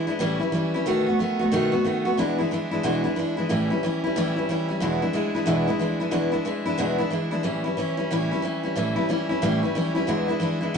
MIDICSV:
0, 0, Header, 1, 2, 480
1, 0, Start_track
1, 0, Tempo, 329128
1, 1263, Time_signature, 4, 2, 24, 8
1, 15716, End_track
2, 0, Start_track
2, 0, Title_t, "Steel-string acoustic guitar"
2, 0, Program_c, 0, 25
2, 102, Note_on_c, 0, 64, 65
2, 116, Note_on_c, 0, 62, 60
2, 136, Note_on_c, 0, 56, 51
2, 143, Note_on_c, 0, 52, 50
2, 274, Note_off_c, 0, 52, 0
2, 278, Note_on_c, 0, 45, 91
2, 286, Note_off_c, 0, 64, 0
2, 292, Note_on_c, 0, 52, 90
2, 293, Note_off_c, 0, 56, 0
2, 297, Note_off_c, 0, 62, 0
2, 299, Note_on_c, 0, 55, 96
2, 303, Note_on_c, 0, 61, 110
2, 304, Note_on_c, 0, 64, 101
2, 559, Note_off_c, 0, 64, 0
2, 577, Note_on_c, 0, 64, 68
2, 584, Note_off_c, 0, 61, 0
2, 592, Note_off_c, 0, 45, 0
2, 599, Note_off_c, 0, 52, 0
2, 602, Note_on_c, 0, 61, 56
2, 603, Note_off_c, 0, 55, 0
2, 624, Note_on_c, 0, 55, 52
2, 759, Note_on_c, 0, 52, 78
2, 760, Note_off_c, 0, 55, 0
2, 769, Note_off_c, 0, 64, 0
2, 776, Note_off_c, 0, 61, 0
2, 777, Note_on_c, 0, 55, 76
2, 793, Note_on_c, 0, 61, 77
2, 806, Note_on_c, 0, 64, 79
2, 1064, Note_off_c, 0, 64, 0
2, 1073, Note_off_c, 0, 52, 0
2, 1082, Note_off_c, 0, 55, 0
2, 1082, Note_on_c, 0, 64, 65
2, 1086, Note_off_c, 0, 61, 0
2, 1104, Note_on_c, 0, 61, 61
2, 1124, Note_on_c, 0, 55, 45
2, 1251, Note_on_c, 0, 47, 81
2, 1252, Note_on_c, 0, 51, 93
2, 1256, Note_off_c, 0, 55, 0
2, 1261, Note_off_c, 0, 64, 0
2, 1261, Note_on_c, 0, 57, 93
2, 1267, Note_off_c, 0, 61, 0
2, 1273, Note_on_c, 0, 59, 93
2, 1275, Note_on_c, 0, 66, 88
2, 1534, Note_off_c, 0, 66, 0
2, 1552, Note_on_c, 0, 66, 56
2, 1558, Note_off_c, 0, 47, 0
2, 1559, Note_off_c, 0, 51, 0
2, 1563, Note_off_c, 0, 59, 0
2, 1564, Note_off_c, 0, 57, 0
2, 1581, Note_on_c, 0, 59, 54
2, 1594, Note_on_c, 0, 57, 43
2, 1734, Note_off_c, 0, 57, 0
2, 1736, Note_off_c, 0, 66, 0
2, 1737, Note_on_c, 0, 51, 72
2, 1744, Note_off_c, 0, 59, 0
2, 1752, Note_on_c, 0, 57, 76
2, 1761, Note_on_c, 0, 59, 78
2, 1778, Note_on_c, 0, 66, 80
2, 2016, Note_off_c, 0, 66, 0
2, 2033, Note_on_c, 0, 66, 65
2, 2040, Note_off_c, 0, 59, 0
2, 2042, Note_off_c, 0, 51, 0
2, 2049, Note_off_c, 0, 57, 0
2, 2058, Note_on_c, 0, 59, 60
2, 2076, Note_on_c, 0, 57, 50
2, 2211, Note_on_c, 0, 47, 93
2, 2213, Note_off_c, 0, 57, 0
2, 2216, Note_off_c, 0, 66, 0
2, 2221, Note_on_c, 0, 51, 97
2, 2223, Note_off_c, 0, 59, 0
2, 2231, Note_on_c, 0, 57, 102
2, 2241, Note_on_c, 0, 59, 95
2, 2241, Note_on_c, 0, 66, 102
2, 2489, Note_off_c, 0, 66, 0
2, 2506, Note_on_c, 0, 66, 69
2, 2507, Note_off_c, 0, 59, 0
2, 2518, Note_off_c, 0, 47, 0
2, 2523, Note_off_c, 0, 51, 0
2, 2525, Note_on_c, 0, 59, 59
2, 2528, Note_off_c, 0, 57, 0
2, 2550, Note_on_c, 0, 57, 51
2, 2686, Note_off_c, 0, 57, 0
2, 2689, Note_on_c, 0, 51, 66
2, 2693, Note_off_c, 0, 66, 0
2, 2702, Note_off_c, 0, 59, 0
2, 2703, Note_on_c, 0, 57, 74
2, 2721, Note_on_c, 0, 59, 80
2, 2732, Note_on_c, 0, 66, 74
2, 2974, Note_off_c, 0, 66, 0
2, 2991, Note_on_c, 0, 66, 60
2, 2997, Note_off_c, 0, 51, 0
2, 3000, Note_off_c, 0, 59, 0
2, 3004, Note_off_c, 0, 57, 0
2, 3017, Note_on_c, 0, 59, 52
2, 3033, Note_on_c, 0, 57, 44
2, 3171, Note_on_c, 0, 40, 82
2, 3175, Note_off_c, 0, 66, 0
2, 3183, Note_on_c, 0, 47, 86
2, 3186, Note_off_c, 0, 57, 0
2, 3188, Note_off_c, 0, 59, 0
2, 3190, Note_on_c, 0, 52, 84
2, 3192, Note_on_c, 0, 56, 88
2, 3194, Note_on_c, 0, 62, 92
2, 3200, Note_on_c, 0, 64, 84
2, 3460, Note_off_c, 0, 64, 0
2, 3471, Note_off_c, 0, 62, 0
2, 3477, Note_on_c, 0, 64, 61
2, 3478, Note_off_c, 0, 40, 0
2, 3484, Note_off_c, 0, 47, 0
2, 3488, Note_off_c, 0, 52, 0
2, 3488, Note_on_c, 0, 62, 57
2, 3489, Note_off_c, 0, 56, 0
2, 3506, Note_on_c, 0, 56, 54
2, 3517, Note_on_c, 0, 52, 47
2, 3645, Note_off_c, 0, 52, 0
2, 3658, Note_off_c, 0, 64, 0
2, 3659, Note_off_c, 0, 56, 0
2, 3663, Note_on_c, 0, 52, 69
2, 3664, Note_off_c, 0, 62, 0
2, 3676, Note_on_c, 0, 56, 73
2, 3692, Note_on_c, 0, 62, 79
2, 3702, Note_on_c, 0, 64, 84
2, 3939, Note_off_c, 0, 64, 0
2, 3955, Note_off_c, 0, 62, 0
2, 3957, Note_on_c, 0, 64, 61
2, 3964, Note_off_c, 0, 52, 0
2, 3971, Note_off_c, 0, 56, 0
2, 3972, Note_on_c, 0, 62, 52
2, 3986, Note_on_c, 0, 56, 49
2, 4000, Note_on_c, 0, 52, 50
2, 4126, Note_off_c, 0, 52, 0
2, 4132, Note_on_c, 0, 40, 91
2, 4133, Note_off_c, 0, 56, 0
2, 4135, Note_off_c, 0, 62, 0
2, 4138, Note_off_c, 0, 64, 0
2, 4139, Note_on_c, 0, 47, 100
2, 4144, Note_on_c, 0, 52, 91
2, 4151, Note_on_c, 0, 56, 100
2, 4152, Note_on_c, 0, 62, 93
2, 4162, Note_on_c, 0, 64, 96
2, 4414, Note_off_c, 0, 64, 0
2, 4427, Note_off_c, 0, 62, 0
2, 4432, Note_on_c, 0, 64, 59
2, 4439, Note_off_c, 0, 40, 0
2, 4441, Note_off_c, 0, 56, 0
2, 4442, Note_off_c, 0, 47, 0
2, 4444, Note_on_c, 0, 62, 56
2, 4445, Note_off_c, 0, 52, 0
2, 4458, Note_on_c, 0, 56, 53
2, 4472, Note_on_c, 0, 52, 47
2, 4593, Note_off_c, 0, 52, 0
2, 4607, Note_off_c, 0, 56, 0
2, 4611, Note_on_c, 0, 52, 69
2, 4616, Note_off_c, 0, 64, 0
2, 4622, Note_off_c, 0, 62, 0
2, 4625, Note_on_c, 0, 56, 68
2, 4645, Note_on_c, 0, 62, 76
2, 4654, Note_on_c, 0, 64, 77
2, 4894, Note_off_c, 0, 64, 0
2, 4912, Note_off_c, 0, 62, 0
2, 4912, Note_on_c, 0, 64, 59
2, 4918, Note_off_c, 0, 52, 0
2, 4925, Note_off_c, 0, 56, 0
2, 4929, Note_on_c, 0, 62, 57
2, 4940, Note_on_c, 0, 56, 51
2, 4953, Note_on_c, 0, 52, 52
2, 5084, Note_off_c, 0, 52, 0
2, 5094, Note_on_c, 0, 45, 84
2, 5096, Note_off_c, 0, 64, 0
2, 5102, Note_off_c, 0, 56, 0
2, 5102, Note_on_c, 0, 52, 92
2, 5105, Note_off_c, 0, 62, 0
2, 5108, Note_on_c, 0, 55, 87
2, 5112, Note_on_c, 0, 61, 92
2, 5123, Note_on_c, 0, 64, 96
2, 5383, Note_off_c, 0, 64, 0
2, 5400, Note_off_c, 0, 45, 0
2, 5401, Note_on_c, 0, 64, 63
2, 5404, Note_off_c, 0, 52, 0
2, 5405, Note_off_c, 0, 61, 0
2, 5407, Note_off_c, 0, 55, 0
2, 5423, Note_on_c, 0, 61, 51
2, 5438, Note_on_c, 0, 55, 43
2, 5580, Note_off_c, 0, 64, 0
2, 5583, Note_off_c, 0, 55, 0
2, 5586, Note_on_c, 0, 52, 71
2, 5591, Note_off_c, 0, 61, 0
2, 5601, Note_on_c, 0, 55, 77
2, 5608, Note_on_c, 0, 61, 85
2, 5627, Note_on_c, 0, 64, 77
2, 5870, Note_off_c, 0, 64, 0
2, 5886, Note_off_c, 0, 52, 0
2, 5888, Note_on_c, 0, 64, 59
2, 5894, Note_off_c, 0, 55, 0
2, 5897, Note_off_c, 0, 61, 0
2, 5912, Note_on_c, 0, 61, 49
2, 5932, Note_on_c, 0, 55, 54
2, 6064, Note_off_c, 0, 64, 0
2, 6067, Note_on_c, 0, 45, 97
2, 6071, Note_off_c, 0, 55, 0
2, 6076, Note_off_c, 0, 61, 0
2, 6085, Note_on_c, 0, 52, 90
2, 6088, Note_on_c, 0, 55, 98
2, 6092, Note_on_c, 0, 61, 105
2, 6098, Note_on_c, 0, 64, 105
2, 6344, Note_off_c, 0, 64, 0
2, 6361, Note_on_c, 0, 64, 65
2, 6367, Note_off_c, 0, 45, 0
2, 6370, Note_off_c, 0, 61, 0
2, 6375, Note_off_c, 0, 52, 0
2, 6377, Note_off_c, 0, 55, 0
2, 6387, Note_on_c, 0, 61, 53
2, 6400, Note_on_c, 0, 55, 51
2, 6540, Note_off_c, 0, 55, 0
2, 6541, Note_off_c, 0, 64, 0
2, 6546, Note_on_c, 0, 52, 71
2, 6554, Note_off_c, 0, 61, 0
2, 6557, Note_on_c, 0, 55, 71
2, 6570, Note_on_c, 0, 61, 80
2, 6579, Note_on_c, 0, 64, 75
2, 6815, Note_off_c, 0, 64, 0
2, 6833, Note_on_c, 0, 64, 55
2, 6836, Note_off_c, 0, 61, 0
2, 6846, Note_off_c, 0, 52, 0
2, 6852, Note_off_c, 0, 55, 0
2, 6853, Note_on_c, 0, 61, 56
2, 6871, Note_on_c, 0, 55, 51
2, 7006, Note_on_c, 0, 40, 82
2, 7017, Note_off_c, 0, 64, 0
2, 7020, Note_on_c, 0, 47, 88
2, 7027, Note_off_c, 0, 55, 0
2, 7027, Note_off_c, 0, 61, 0
2, 7027, Note_on_c, 0, 52, 97
2, 7032, Note_on_c, 0, 56, 86
2, 7033, Note_on_c, 0, 62, 90
2, 7041, Note_on_c, 0, 64, 86
2, 7305, Note_off_c, 0, 64, 0
2, 7316, Note_off_c, 0, 40, 0
2, 7317, Note_off_c, 0, 62, 0
2, 7323, Note_off_c, 0, 47, 0
2, 7323, Note_on_c, 0, 64, 59
2, 7327, Note_off_c, 0, 52, 0
2, 7329, Note_off_c, 0, 56, 0
2, 7334, Note_on_c, 0, 62, 55
2, 7347, Note_on_c, 0, 56, 51
2, 7358, Note_on_c, 0, 52, 47
2, 7469, Note_off_c, 0, 52, 0
2, 7477, Note_off_c, 0, 56, 0
2, 7486, Note_on_c, 0, 52, 82
2, 7493, Note_off_c, 0, 62, 0
2, 7495, Note_on_c, 0, 56, 74
2, 7502, Note_off_c, 0, 64, 0
2, 7510, Note_on_c, 0, 62, 85
2, 7521, Note_on_c, 0, 64, 87
2, 7781, Note_off_c, 0, 64, 0
2, 7796, Note_off_c, 0, 52, 0
2, 7799, Note_on_c, 0, 64, 58
2, 7800, Note_off_c, 0, 62, 0
2, 7801, Note_off_c, 0, 56, 0
2, 7818, Note_on_c, 0, 62, 58
2, 7819, Note_on_c, 0, 56, 55
2, 7842, Note_on_c, 0, 52, 51
2, 7956, Note_off_c, 0, 52, 0
2, 7959, Note_on_c, 0, 40, 99
2, 7967, Note_off_c, 0, 56, 0
2, 7971, Note_off_c, 0, 64, 0
2, 7974, Note_off_c, 0, 62, 0
2, 7974, Note_on_c, 0, 52, 102
2, 7975, Note_on_c, 0, 47, 100
2, 7984, Note_on_c, 0, 56, 87
2, 7988, Note_on_c, 0, 64, 99
2, 7992, Note_on_c, 0, 62, 106
2, 8258, Note_off_c, 0, 64, 0
2, 8272, Note_off_c, 0, 62, 0
2, 8273, Note_off_c, 0, 40, 0
2, 8275, Note_on_c, 0, 64, 62
2, 8280, Note_off_c, 0, 52, 0
2, 8281, Note_off_c, 0, 47, 0
2, 8282, Note_off_c, 0, 56, 0
2, 8289, Note_on_c, 0, 62, 58
2, 8300, Note_on_c, 0, 56, 56
2, 8315, Note_on_c, 0, 52, 51
2, 8432, Note_off_c, 0, 52, 0
2, 8450, Note_on_c, 0, 52, 70
2, 8451, Note_off_c, 0, 56, 0
2, 8458, Note_off_c, 0, 64, 0
2, 8465, Note_off_c, 0, 62, 0
2, 8468, Note_on_c, 0, 56, 73
2, 8480, Note_on_c, 0, 62, 81
2, 8489, Note_on_c, 0, 64, 83
2, 8732, Note_off_c, 0, 64, 0
2, 8747, Note_off_c, 0, 62, 0
2, 8750, Note_on_c, 0, 64, 60
2, 8754, Note_off_c, 0, 56, 0
2, 8758, Note_off_c, 0, 52, 0
2, 8765, Note_on_c, 0, 62, 56
2, 8771, Note_on_c, 0, 56, 56
2, 8784, Note_on_c, 0, 52, 47
2, 8906, Note_off_c, 0, 52, 0
2, 8915, Note_off_c, 0, 56, 0
2, 8915, Note_on_c, 0, 40, 92
2, 8919, Note_on_c, 0, 47, 88
2, 8920, Note_off_c, 0, 62, 0
2, 8922, Note_off_c, 0, 64, 0
2, 8924, Note_on_c, 0, 52, 92
2, 8933, Note_on_c, 0, 56, 93
2, 8937, Note_on_c, 0, 62, 85
2, 8940, Note_on_c, 0, 64, 85
2, 9195, Note_off_c, 0, 64, 0
2, 9212, Note_off_c, 0, 62, 0
2, 9213, Note_on_c, 0, 64, 57
2, 9224, Note_off_c, 0, 56, 0
2, 9230, Note_on_c, 0, 62, 51
2, 9231, Note_off_c, 0, 40, 0
2, 9233, Note_off_c, 0, 47, 0
2, 9235, Note_off_c, 0, 52, 0
2, 9241, Note_on_c, 0, 56, 55
2, 9258, Note_on_c, 0, 52, 48
2, 9388, Note_off_c, 0, 52, 0
2, 9399, Note_off_c, 0, 56, 0
2, 9405, Note_on_c, 0, 52, 73
2, 9407, Note_off_c, 0, 64, 0
2, 9412, Note_off_c, 0, 62, 0
2, 9416, Note_on_c, 0, 56, 84
2, 9429, Note_on_c, 0, 62, 76
2, 9442, Note_on_c, 0, 64, 84
2, 9689, Note_off_c, 0, 64, 0
2, 9705, Note_off_c, 0, 62, 0
2, 9706, Note_on_c, 0, 64, 68
2, 9716, Note_off_c, 0, 52, 0
2, 9718, Note_off_c, 0, 56, 0
2, 9722, Note_on_c, 0, 62, 54
2, 9735, Note_on_c, 0, 56, 53
2, 9749, Note_on_c, 0, 52, 47
2, 9878, Note_off_c, 0, 52, 0
2, 9882, Note_off_c, 0, 56, 0
2, 9882, Note_on_c, 0, 40, 91
2, 9892, Note_off_c, 0, 62, 0
2, 9892, Note_on_c, 0, 47, 91
2, 9894, Note_off_c, 0, 64, 0
2, 9896, Note_on_c, 0, 52, 100
2, 9899, Note_on_c, 0, 56, 87
2, 9910, Note_on_c, 0, 62, 88
2, 9916, Note_on_c, 0, 64, 100
2, 10168, Note_off_c, 0, 64, 0
2, 10185, Note_on_c, 0, 64, 57
2, 10186, Note_off_c, 0, 62, 0
2, 10195, Note_off_c, 0, 40, 0
2, 10197, Note_off_c, 0, 56, 0
2, 10200, Note_off_c, 0, 47, 0
2, 10202, Note_off_c, 0, 52, 0
2, 10204, Note_on_c, 0, 62, 63
2, 10215, Note_on_c, 0, 56, 51
2, 10227, Note_on_c, 0, 52, 53
2, 10343, Note_off_c, 0, 52, 0
2, 10358, Note_off_c, 0, 56, 0
2, 10361, Note_on_c, 0, 52, 63
2, 10373, Note_off_c, 0, 64, 0
2, 10374, Note_off_c, 0, 62, 0
2, 10376, Note_on_c, 0, 56, 72
2, 10392, Note_on_c, 0, 62, 76
2, 10403, Note_on_c, 0, 64, 76
2, 10644, Note_off_c, 0, 64, 0
2, 10662, Note_on_c, 0, 64, 62
2, 10663, Note_off_c, 0, 62, 0
2, 10673, Note_off_c, 0, 56, 0
2, 10674, Note_off_c, 0, 52, 0
2, 10681, Note_on_c, 0, 62, 60
2, 10691, Note_on_c, 0, 56, 51
2, 10700, Note_on_c, 0, 52, 49
2, 10831, Note_off_c, 0, 52, 0
2, 10838, Note_on_c, 0, 45, 79
2, 10846, Note_off_c, 0, 56, 0
2, 10849, Note_on_c, 0, 52, 85
2, 10852, Note_off_c, 0, 64, 0
2, 10852, Note_on_c, 0, 55, 81
2, 10856, Note_off_c, 0, 62, 0
2, 10862, Note_on_c, 0, 61, 81
2, 10868, Note_on_c, 0, 64, 88
2, 11124, Note_off_c, 0, 64, 0
2, 11141, Note_on_c, 0, 64, 58
2, 11147, Note_off_c, 0, 61, 0
2, 11153, Note_off_c, 0, 45, 0
2, 11158, Note_off_c, 0, 52, 0
2, 11160, Note_off_c, 0, 55, 0
2, 11164, Note_on_c, 0, 61, 53
2, 11191, Note_on_c, 0, 55, 45
2, 11328, Note_off_c, 0, 55, 0
2, 11330, Note_on_c, 0, 52, 72
2, 11332, Note_off_c, 0, 64, 0
2, 11338, Note_off_c, 0, 61, 0
2, 11346, Note_on_c, 0, 55, 76
2, 11356, Note_on_c, 0, 61, 74
2, 11372, Note_on_c, 0, 64, 82
2, 11610, Note_off_c, 0, 64, 0
2, 11627, Note_on_c, 0, 64, 67
2, 11630, Note_off_c, 0, 61, 0
2, 11639, Note_off_c, 0, 52, 0
2, 11647, Note_off_c, 0, 55, 0
2, 11647, Note_on_c, 0, 61, 53
2, 11665, Note_on_c, 0, 55, 52
2, 11815, Note_off_c, 0, 64, 0
2, 11820, Note_on_c, 0, 45, 86
2, 11822, Note_off_c, 0, 55, 0
2, 11825, Note_off_c, 0, 61, 0
2, 11830, Note_on_c, 0, 52, 82
2, 11840, Note_on_c, 0, 55, 87
2, 11846, Note_on_c, 0, 61, 100
2, 11851, Note_on_c, 0, 64, 104
2, 12105, Note_off_c, 0, 64, 0
2, 12122, Note_on_c, 0, 64, 61
2, 12125, Note_off_c, 0, 45, 0
2, 12129, Note_off_c, 0, 52, 0
2, 12129, Note_off_c, 0, 61, 0
2, 12134, Note_off_c, 0, 55, 0
2, 12146, Note_on_c, 0, 61, 60
2, 12167, Note_on_c, 0, 55, 51
2, 12282, Note_off_c, 0, 55, 0
2, 12282, Note_on_c, 0, 52, 73
2, 12300, Note_off_c, 0, 61, 0
2, 12300, Note_on_c, 0, 55, 63
2, 12302, Note_off_c, 0, 64, 0
2, 12317, Note_on_c, 0, 61, 75
2, 12325, Note_on_c, 0, 64, 74
2, 12574, Note_off_c, 0, 64, 0
2, 12591, Note_on_c, 0, 64, 55
2, 12593, Note_off_c, 0, 61, 0
2, 12595, Note_off_c, 0, 52, 0
2, 12604, Note_off_c, 0, 55, 0
2, 12610, Note_on_c, 0, 61, 50
2, 12631, Note_on_c, 0, 55, 53
2, 12768, Note_off_c, 0, 55, 0
2, 12769, Note_on_c, 0, 45, 86
2, 12776, Note_off_c, 0, 61, 0
2, 12777, Note_off_c, 0, 64, 0
2, 12779, Note_on_c, 0, 52, 78
2, 12786, Note_on_c, 0, 55, 88
2, 12794, Note_on_c, 0, 61, 90
2, 12796, Note_on_c, 0, 64, 100
2, 13048, Note_off_c, 0, 64, 0
2, 13066, Note_on_c, 0, 64, 64
2, 13072, Note_off_c, 0, 61, 0
2, 13079, Note_off_c, 0, 45, 0
2, 13083, Note_off_c, 0, 55, 0
2, 13084, Note_off_c, 0, 52, 0
2, 13090, Note_on_c, 0, 61, 49
2, 13100, Note_on_c, 0, 55, 50
2, 13249, Note_off_c, 0, 55, 0
2, 13254, Note_on_c, 0, 52, 68
2, 13255, Note_off_c, 0, 64, 0
2, 13256, Note_off_c, 0, 61, 0
2, 13266, Note_on_c, 0, 55, 84
2, 13273, Note_on_c, 0, 61, 81
2, 13286, Note_on_c, 0, 64, 81
2, 13533, Note_off_c, 0, 64, 0
2, 13550, Note_on_c, 0, 64, 62
2, 13560, Note_off_c, 0, 61, 0
2, 13562, Note_off_c, 0, 52, 0
2, 13568, Note_off_c, 0, 55, 0
2, 13578, Note_on_c, 0, 61, 57
2, 13595, Note_on_c, 0, 55, 49
2, 13735, Note_off_c, 0, 55, 0
2, 13736, Note_on_c, 0, 45, 100
2, 13737, Note_off_c, 0, 61, 0
2, 13737, Note_off_c, 0, 64, 0
2, 13744, Note_on_c, 0, 52, 92
2, 13752, Note_on_c, 0, 55, 104
2, 13754, Note_on_c, 0, 61, 101
2, 13761, Note_on_c, 0, 64, 102
2, 14025, Note_off_c, 0, 64, 0
2, 14042, Note_on_c, 0, 64, 64
2, 14043, Note_off_c, 0, 45, 0
2, 14045, Note_off_c, 0, 61, 0
2, 14047, Note_off_c, 0, 52, 0
2, 14051, Note_off_c, 0, 55, 0
2, 14063, Note_on_c, 0, 61, 60
2, 14078, Note_on_c, 0, 55, 54
2, 14218, Note_off_c, 0, 55, 0
2, 14221, Note_on_c, 0, 52, 70
2, 14223, Note_off_c, 0, 64, 0
2, 14227, Note_off_c, 0, 61, 0
2, 14235, Note_on_c, 0, 55, 73
2, 14245, Note_on_c, 0, 61, 74
2, 14257, Note_on_c, 0, 64, 87
2, 14491, Note_off_c, 0, 64, 0
2, 14508, Note_on_c, 0, 64, 60
2, 14512, Note_off_c, 0, 61, 0
2, 14526, Note_off_c, 0, 52, 0
2, 14529, Note_on_c, 0, 61, 59
2, 14533, Note_off_c, 0, 55, 0
2, 14549, Note_on_c, 0, 55, 51
2, 14687, Note_on_c, 0, 40, 83
2, 14696, Note_off_c, 0, 64, 0
2, 14696, Note_on_c, 0, 47, 80
2, 14698, Note_on_c, 0, 52, 84
2, 14701, Note_off_c, 0, 55, 0
2, 14705, Note_off_c, 0, 61, 0
2, 14707, Note_on_c, 0, 56, 95
2, 14711, Note_on_c, 0, 62, 90
2, 14711, Note_on_c, 0, 64, 93
2, 14975, Note_off_c, 0, 64, 0
2, 14992, Note_on_c, 0, 64, 59
2, 14994, Note_off_c, 0, 62, 0
2, 14999, Note_off_c, 0, 40, 0
2, 15003, Note_off_c, 0, 47, 0
2, 15004, Note_off_c, 0, 52, 0
2, 15009, Note_off_c, 0, 56, 0
2, 15011, Note_on_c, 0, 62, 60
2, 15024, Note_on_c, 0, 56, 47
2, 15031, Note_on_c, 0, 52, 50
2, 15145, Note_off_c, 0, 52, 0
2, 15163, Note_off_c, 0, 56, 0
2, 15163, Note_on_c, 0, 52, 76
2, 15176, Note_off_c, 0, 62, 0
2, 15178, Note_off_c, 0, 64, 0
2, 15180, Note_on_c, 0, 56, 74
2, 15193, Note_on_c, 0, 62, 75
2, 15209, Note_on_c, 0, 64, 90
2, 15451, Note_off_c, 0, 64, 0
2, 15467, Note_off_c, 0, 62, 0
2, 15469, Note_on_c, 0, 64, 54
2, 15477, Note_off_c, 0, 52, 0
2, 15481, Note_off_c, 0, 56, 0
2, 15484, Note_on_c, 0, 62, 57
2, 15498, Note_on_c, 0, 56, 57
2, 15507, Note_on_c, 0, 52, 50
2, 15655, Note_off_c, 0, 52, 0
2, 15657, Note_off_c, 0, 64, 0
2, 15661, Note_off_c, 0, 56, 0
2, 15665, Note_off_c, 0, 62, 0
2, 15667, Note_on_c, 0, 40, 85
2, 15670, Note_on_c, 0, 47, 96
2, 15716, Note_off_c, 0, 40, 0
2, 15716, Note_off_c, 0, 47, 0
2, 15716, End_track
0, 0, End_of_file